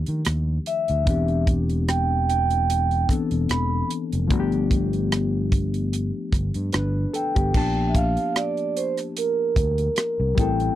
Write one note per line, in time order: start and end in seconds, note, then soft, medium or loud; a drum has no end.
0.00 1.04 D#3 medium
0.00 1.02 F3 medium
0.00 1.02 A3 medium
0.00 1.03 D4 medium
0.00 1.04 G4 medium
0.06 0.22 D#3 medium
0.06 closed hi-hat soft
0.25 0.57 D#2 medium
0.25 cross-stick loud
0.25 closed hi-hat medium
0.66 1.44 E5 medium
0.66 closed hi-hat medium
0.88 1.03 D2 medium
0.88 closed hi-hat soft
1.04 3.06 E1 medium
1.04 3.04 E3 medium
1.04 3.05 B3 medium
1.04 3.05 C4 medium
1.04 kick medium
1.04 closed hi-hat medium
1.09 3.06 D4 medium
1.09 3.07 G4 medium
1.28 closed hi-hat soft
1.47 kick medium
1.47 closed hi-hat medium
1.70 closed hi-hat soft
1.88 2.28 G5 medium
1.88 cross-stick medium
1.88 closed hi-hat medium
2.29 3.06 G5 loud
2.29 closed hi-hat medium
2.50 closed hi-hat soft
2.70 closed hi-hat medium
2.91 closed hi-hat soft
3.08 4.30 E3 soft
3.08 4.29 B3 soft
3.08 4.31 C4 soft
3.08 4.30 D4 soft
3.08 4.31 A4 soft
3.08 muted fingered electric bass stroke soft
3.08 kick medium
3.08 cross-stick soft
3.08 closed hi-hat medium
3.31 3.46 E1 medium
3.31 closed hi-hat soft
3.49 3.81 E1 medium
3.49 3.88 B5 medium
3.49 cross-stick medium
3.49 closed hi-hat medium
3.90 closed hi-hat medium
4.12 4.31 F1 medium
4.12 closed hi-hat soft
4.27 6.10 G1 medium
4.27 7.49 F3 medium
4.27 7.49 A3 medium
4.27 6.69 B3 medium
4.27 kick loud
4.27 closed hi-hat medium
4.31 6.70 D4 medium
4.31 4.39 F#4 medium
4.40 6.74 G4 medium
4.52 closed hi-hat soft
4.71 kick medium
4.71 closed hi-hat medium
4.93 closed hi-hat soft
5.12 cross-stick loud
5.12 closed hi-hat medium
5.52 kick medium
5.52 closed hi-hat medium
5.74 closed hi-hat soft
5.93 closed hi-hat medium
6.33 6.50 G1 medium
6.33 kick medium
6.33 cross-stick soft
6.33 closed hi-hat medium
6.54 6.69 G2 medium
6.54 closed hi-hat soft
6.72 7.05 G1 medium
6.72 7.12 D4 soft
6.72 7.12 B4 medium
6.72 cross-stick loud
6.72 closed hi-hat medium
7.13 7.34 A4 medium
7.13 7.91 G5 medium
7.13 closed hi-hat medium
7.35 7.50 G1 medium
7.35 7.74 B3 soft
7.35 7.74 G4 medium
7.35 kick medium
7.35 closed hi-hat soft
7.52 8.16 A#1 medium
7.52 10.32 F3 medium
7.52 10.34 A#3 medium
7.52 kick loud
7.52 crash medium
7.56 10.34 D4 soft
7.56 10.35 A5 medium
7.89 7.95 E5 medium
7.95 8.37 F5 medium
7.95 kick medium
7.95 closed hi-hat medium
8.17 closed hi-hat soft
8.36 8.78 D5 medium
8.36 cross-stick medium
8.36 closed hi-hat medium
8.57 closed hi-hat soft
8.77 8.95 C5 medium
8.77 closed hi-hat medium
8.97 cross-stick soft
8.97 closed hi-hat soft
9.17 10.42 A#4 medium
9.17 closed hi-hat medium
9.56 9.87 D2 medium
9.56 kick medium
9.56 closed hi-hat medium
9.78 closed hi-hat soft
9.96 cross-stick loud
9.96 closed hi-hat medium
10.20 10.33 C2 medium
10.35 10.68 A1 medium
10.35 10.75 G3 medium
10.35 10.75 A3 medium
10.35 10.75 C4 medium
10.35 10.75 G5 medium
10.35 kick loud
10.35 closed hi-hat medium
10.39 10.75 E4 medium
10.39 10.75 A4 medium
10.60 closed hi-hat soft